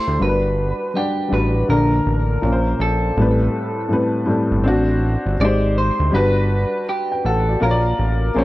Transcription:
0.00 0.14 A3 medium
0.00 0.15 E4 medium
0.00 0.16 G4 medium
0.00 0.16 C5 loud
0.00 0.22 C5 medium
0.07 0.19 D2 medium
0.19 0.73 G1 medium
0.19 0.88 G3 medium
0.19 0.89 D4 medium
0.19 0.90 F#4 medium
0.19 0.29 A#4 medium
0.19 0.97 B4 loud
0.29 0.94 B4 medium
0.94 1.27 G3 medium
0.94 1.28 D4 medium
0.94 1.33 G4 medium
0.94 1.30 F#5 medium
0.98 1.31 D5 medium
1.28 1.64 A1 medium
1.28 1.67 G3 medium
1.28 1.68 D4 medium
1.28 1.68 F#4 medium
1.33 1.69 B4 medium
1.33 1.70 B4 medium
1.68 2.01 A#1 loud
1.68 2.37 D3 medium
1.68 2.38 A#3 medium
1.68 2.39 D4 medium
1.68 2.81 A#4 medium
1.73 2.39 A#4 medium
2.06 2.38 A1 medium
2.42 2.75 A#1 loud
2.42 3.11 A#2 medium
2.42 3.12 A#3 medium
2.42 3.13 C#4 medium
2.46 2.52 A#4 medium
2.53 3.17 C5 medium
2.80 3.12 A#1 medium
2.80 4.99 A4 medium
3.17 3.49 A1 loud
3.17 3.86 A2 medium
3.17 3.87 G3 medium
3.17 3.87 C4 medium
3.21 3.88 B4 medium
3.89 4.24 A2 medium
3.89 4.25 G3 medium
3.89 4.25 C4 medium
3.93 4.26 B4 medium
4.26 4.64 A2 medium
4.26 4.64 G3 medium
4.26 4.62 C4 medium
4.26 4.66 A4 medium
4.51 4.67 G1 medium
4.64 5.17 A1 loud
4.64 5.33 C4 medium
4.64 5.34 D4 medium
4.68 5.35 F#4 loud
5.26 5.37 G1 medium
5.39 5.91 G#1 loud
5.39 6.09 G#3 medium
5.39 6.09 D#4 medium
5.39 5.78 D5 loud
5.43 6.10 G4 medium
5.43 6.11 C5 loud
5.78 6.11 C5 loud
5.99 6.11 D2 medium
6.11 6.65 G1 loud
6.11 6.81 G3 medium
6.11 6.82 D4 medium
6.11 6.82 F#4 medium
6.11 6.89 B4 loud
6.16 6.83 B4 loud
6.89 7.26 G4 medium
7.12 7.24 B4 medium
7.12 7.24 G5 medium
7.25 7.56 A1 medium
7.25 7.62 A4 medium
7.25 7.47 A4 medium
7.25 7.47 F#5 medium
7.49 7.83 F#4 medium
7.49 7.69 D5 medium
7.60 7.93 A#1 loud
7.60 8.29 A#3 medium
7.60 8.30 F4 loud
7.60 8.31 A#4 medium
7.60 8.44 A#4 loud
7.64 7.71 C#5 medium
7.71 8.35 D5 loud
7.99 8.30 A1 medium
8.35 8.44 A#1 loud
8.35 8.44 A#3 medium
8.35 8.44 G#4 medium
8.35 8.44 C5 medium
8.39 8.44 C#4 loud

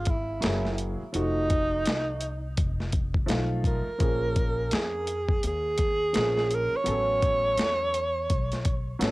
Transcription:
0.00 0.40 G#1 medium
0.00 0.11 F4 medium
0.06 kick medium
0.06 closed hi-hat medium
0.10 0.80 E4 medium
0.41 0.98 F#1 medium
0.41 1.00 F#3 medium
0.41 1.01 A#3 medium
0.41 1.01 E4 medium
0.41 1.02 G#4 medium
0.41 snare loud
0.41 closed hi-hat medium
0.65 snare soft
0.78 closed hi-hat medium
1.01 muted upright bass stroke soft
1.12 1.83 F1 loud
1.12 2.22 F3 medium
1.12 2.23 A3 medium
1.12 2.23 D#4 medium
1.12 2.54 D#4 loud
1.12 2.24 F#4 medium
1.12 closed hi-hat medium
1.50 kick medium
1.50 closed hi-hat medium
1.85 2.54 C2 medium
1.85 snare loud
1.85 closed hi-hat medium
2.21 closed hi-hat medium
2.57 3.26 F1 loud
2.57 kick loud
2.57 closed hi-hat loud
2.80 snare soft
2.92 kick loud
2.92 closed hi-hat medium
3.14 kick medium
3.26 3.84 B1 medium
3.26 3.86 F3 medium
3.26 3.86 A3 medium
3.26 3.87 D#4 medium
3.26 3.87 F4 loud
3.26 snare loud
3.26 closed hi-hat medium
3.64 4.76 A#4 loud
3.64 kick medium
3.64 closed hi-hat medium
3.87 muted upright bass stroke soft
3.98 4.68 A#1 loud
3.98 5.08 F3 medium
3.98 5.09 A#3 medium
3.98 5.09 C#4 medium
3.98 5.10 G#4 medium
3.98 kick loud
3.98 closed hi-hat medium
4.36 kick medium
4.36 closed hi-hat medium
4.71 5.40 F2 medium
4.71 5.45 G#4 medium
4.71 snare loud
4.71 closed hi-hat medium
5.07 closed hi-hat medium
5.29 kick medium
5.43 6.12 D#2 medium
5.43 closed hi-hat loud
5.47 6.56 G#4 loud
5.78 kick medium
5.78 closed hi-hat medium
6.13 6.70 A#1 loud
6.13 6.72 F3 medium
6.13 6.73 A#3 medium
6.13 6.73 C#4 medium
6.13 6.73 G#4 medium
6.13 snare loud
6.13 closed hi-hat medium
6.37 snare soft
6.51 closed hi-hat medium
6.55 6.78 A#4 loud
6.73 9.03 C#5 loud
6.73 muted upright bass stroke soft
6.84 7.54 A1 loud
6.84 7.94 F#3 medium
6.84 7.94 B3 medium
6.84 7.95 C#4 medium
6.84 7.96 A4 medium
6.84 closed hi-hat medium
7.22 kick medium
7.22 closed hi-hat medium
7.57 8.26 E2 loud
7.57 snare loud
7.57 closed hi-hat medium
7.94 closed hi-hat medium
8.30 8.98 B1 medium
8.30 kick medium
8.30 closed hi-hat loud
8.52 snare soft
8.52 closed hi-hat soft
8.65 kick medium
8.65 closed hi-hat medium
8.99 9.11 A1 medium
8.99 9.11 F#3 medium
8.99 9.11 B3 medium
8.99 9.11 C#4 medium
8.99 9.11 A4 medium
8.99 snare loud
8.99 closed hi-hat medium

